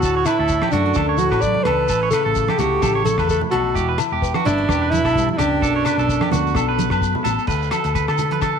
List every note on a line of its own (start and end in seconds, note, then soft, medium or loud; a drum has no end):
0.00 0.24 D2 loud
0.00 0.26 A2 medium
0.00 1.90 D3 medium
0.00 0.27 F#4 medium
0.00 kick medium
0.00 shekere medium
0.04 0.26 D4 medium
0.04 0.16 A4 medium
0.17 0.27 C#5 medium
0.26 0.73 A2 medium
0.26 0.50 D4 medium
0.26 0.71 E4 medium
0.26 0.39 B4 medium
0.26 cross-stick medium
0.26 closed hi-hat soft
0.26 low agogo medium
0.26 shekere medium
0.39 0.60 D2 medium
0.39 0.62 A4 medium
0.48 1.87 D4 medium
0.48 kick medium
0.48 shekere medium
0.62 0.73 G4 medium
0.62 cross-stick medium
0.62 high conga medium
0.62 low agogo medium
0.71 0.94 F#2 medium
0.71 1.87 A3 medium
0.71 1.20 D4 medium
0.71 0.86 E4 medium
0.71 0.95 F#4 medium
0.71 closed hi-hat soft
0.71 low conga medium
0.71 shekere medium
0.76 1.23 F#2 medium
0.86 1.42 F#4 soft
0.94 1.29 D2 medium
0.94 1.08 A4 medium
0.94 3.76 A4 medium
0.94 kick medium
0.94 cross-stick medium
0.94 high conga medium
0.94 low agogo medium
0.94 shekere medium
1.09 1.31 C#5 medium
1.18 1.88 A2 medium
1.18 1.46 A2 medium
1.18 1.43 F#4 medium
1.18 closed hi-hat soft
1.18 high conga medium
1.18 shekere medium
1.31 1.54 A1 medium
1.31 1.54 B4 medium
1.31 kick medium
1.31 cross-stick medium
1.31 low agogo medium
1.31 shekere soft
1.42 1.71 F#3 medium
1.42 1.87 F#4 medium
1.42 1.65 D5 loud
1.42 kick medium
1.42 shekere medium
1.54 low conga medium
1.64 1.90 C#2 medium
1.64 1.88 A4 medium
1.64 2.10 B4 loud
1.64 cross-stick medium
1.64 closed hi-hat soft
1.64 low conga medium
1.64 low agogo medium
1.70 2.13 E3 medium
1.89 2.11 A1 medium
1.89 3.76 A2 medium
1.89 2.12 C#4 medium
1.89 2.35 E4 medium
1.89 2.02 A4 medium
1.89 kick medium
1.89 shekere medium
2.03 2.13 C#5 medium
2.11 2.61 C#3 medium
2.11 3.73 C#4 medium
2.11 2.60 A4 medium
2.11 2.25 B4 medium
2.11 cross-stick medium
2.11 closed hi-hat soft
2.11 low agogo medium
2.11 shekere medium
2.25 2.47 A1 medium
2.25 2.48 A4 medium
2.35 2.59 E4 medium
2.35 kick medium
2.35 shekere medium
2.48 2.59 G4 medium
2.48 cross-stick medium
2.48 high conga medium
2.48 low agogo medium
2.58 2.81 C#2 loud
2.58 3.06 C#3 medium
2.58 3.73 A3 medium
2.58 2.82 E4 medium
2.58 2.82 F#4 medium
2.58 3.05 G4 medium
2.58 closed hi-hat soft
2.58 low conga medium
2.58 shekere medium
2.82 3.15 A1 loud
2.82 3.29 E4 medium
2.82 2.95 A4 medium
2.82 kick medium
2.82 cross-stick medium
2.82 high conga medium
2.82 low agogo medium
2.82 shekere medium
2.95 3.17 C#5 medium
3.05 3.28 C#3 medium
3.05 3.73 E3 medium
3.05 3.27 A4 medium
3.05 closed hi-hat medium
3.05 high conga medium
3.05 shekere medium
3.18 3.40 E2 medium
3.18 3.41 B4 medium
3.18 kick medium
3.18 cross-stick medium
3.18 low agogo medium
3.18 shekere soft
3.29 3.39 C#3 medium
3.29 3.74 E4 soft
3.29 3.40 A4 medium
3.29 kick medium
3.29 shekere medium
3.41 high conga medium
3.41 low conga medium
3.51 3.77 B1 medium
3.51 3.96 B2 medium
3.51 3.95 F#4 medium
3.51 3.74 A4 medium
3.51 closed hi-hat medium
3.51 low conga medium
3.51 low agogo medium
3.75 3.97 E1 medium
3.75 5.59 E3 medium
3.75 3.97 E4 medium
3.75 3.87 G4 medium
3.75 kick medium
3.75 shekere medium
3.89 3.99 B4 medium
3.98 4.44 E4 medium
3.98 cross-stick medium
3.98 closed hi-hat medium
3.98 low agogo medium
3.98 shekere medium
4.12 4.33 E1 medium
4.12 4.34 G4 medium
4.22 4.68 B4 medium
4.22 kick medium
4.22 shekere medium
4.34 4.45 F#4 medium
4.34 cross-stick medium
4.34 high conga medium
4.34 low agogo medium
4.45 4.67 G1 loud
4.45 4.96 F#2 medium
4.45 4.92 D4 loud
4.45 4.58 E4 medium
4.45 4.68 E4 medium
4.45 closed hi-hat medium
4.45 low conga medium
4.45 shekere medium
4.58 5.61 F#4 soft
4.69 5.02 E1 loud
4.69 4.81 G4 medium
4.69 5.59 B4 medium
4.69 kick medium
4.69 cross-stick medium
4.69 high conga medium
4.69 low agogo medium
4.69 shekere medium
4.82 5.04 B4 medium
4.91 5.33 G2 medium
4.91 5.59 B2 medium
4.91 5.31 E4 loud
4.91 closed hi-hat soft
4.91 high conga medium
4.91 shekere medium
5.05 5.26 B1 medium
5.05 5.27 A4 medium
5.05 kick medium
5.05 cross-stick medium
5.05 low agogo medium
5.05 shekere soft
5.15 5.62 G3 soft
5.15 kick medium
5.15 shekere medium
5.29 5.39 E4 medium
5.29 high conga medium
5.29 low conga medium
5.35 5.62 C#2 medium
5.35 5.42 G2 medium
5.35 7.01 D4 medium
5.35 cross-stick medium
5.35 closed hi-hat soft
5.35 low agogo medium
5.39 7.03 F#2 medium
5.39 5.61 G4 medium
5.39 low conga medium
5.39 shekere medium
5.61 5.84 B1 medium
5.61 7.45 B2 medium
5.61 5.83 D4 medium
5.61 6.29 F#4 medium
5.61 5.74 A4 medium
5.61 6.05 A4 medium
5.61 kick medium
5.61 shekere medium
5.76 5.85 C#5 medium
5.84 7.45 D4 medium
5.84 5.98 B4 medium
5.84 cross-stick medium
5.84 closed hi-hat medium
5.84 low agogo medium
5.84 shekere medium
5.98 6.19 B1 medium
5.98 6.21 A4 medium
5.98 shekere soft
6.07 6.53 A4 medium
6.07 kick medium
6.07 shekere medium
6.21 6.32 G4 medium
6.21 cross-stick medium
6.21 high conga medium
6.21 low agogo medium
6.30 6.54 D2 loud
6.30 7.45 B3 medium
6.30 7.00 F#4 medium
6.30 6.54 F#4 medium
6.30 closed hi-hat soft
6.30 high conga medium
6.30 low conga medium
6.30 shekere medium
6.47 shekere soft
6.54 6.88 B1 medium
6.54 7.46 A4 medium
6.54 6.68 A4 medium
6.54 kick medium
6.54 cross-stick medium
6.54 high conga medium
6.54 low agogo medium
6.54 shekere medium
6.69 6.90 B4 medium
6.77 7.45 F#3 medium
6.77 closed hi-hat medium
6.77 high conga medium
6.77 shekere medium
6.90 7.12 F#2 medium
6.90 7.13 B4 medium
6.90 kick medium
6.90 cross-stick medium
6.90 low agogo medium
6.90 shekere soft
7.01 7.45 F#4 soft
7.01 kick medium
7.01 shekere medium
7.15 low conga medium
7.24 7.37 A1 medium
7.24 7.47 A4 medium
7.24 closed hi-hat soft
7.24 low conga medium
7.24 low agogo medium
7.24 shekere medium
7.39 shekere soft
7.46 7.70 D2 medium
7.46 8.59 D3 medium
7.46 8.19 A4 medium
7.46 7.70 B4 medium
7.46 kick medium
7.46 crash medium
7.46 shekere medium
7.62 shekere soft
7.71 8.59 F#4 medium
7.71 7.94 A4 medium
7.71 cross-stick medium
7.71 closed hi-hat soft
7.71 high conga medium
7.71 low agogo medium
7.71 shekere medium
7.84 8.06 D2 medium
7.84 closed hi-hat soft
7.84 shekere soft
7.95 8.59 A3 soft
7.95 8.07 B4 medium
7.95 kick medium
7.95 closed hi-hat soft
7.95 shekere medium
8.08 8.59 D3 medium
8.08 8.30 A4 medium
8.08 cross-stick medium
8.08 low agogo medium
8.08 shekere soft
8.18 8.59 A4 medium
8.18 closed hi-hat soft
8.18 low conga medium
8.18 shekere medium
8.31 8.42 B4 medium
8.31 closed hi-hat soft
8.31 high conga medium
8.41 8.59 A4 medium
8.41 kick medium
8.41 cross-stick medium
8.41 closed hi-hat soft
8.41 high conga medium
8.41 low agogo medium
8.41 shekere medium